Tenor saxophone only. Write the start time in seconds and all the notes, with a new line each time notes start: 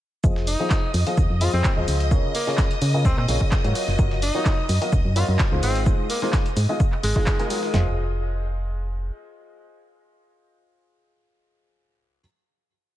0.47 D#4
1.41 F4
1.53 C4
2.35 A#3
3.05 C4
3.18 C4
4.22 D#4
5.16 F4
5.63 C4
6.10 A#3
6.22 A#3
7.04 G#3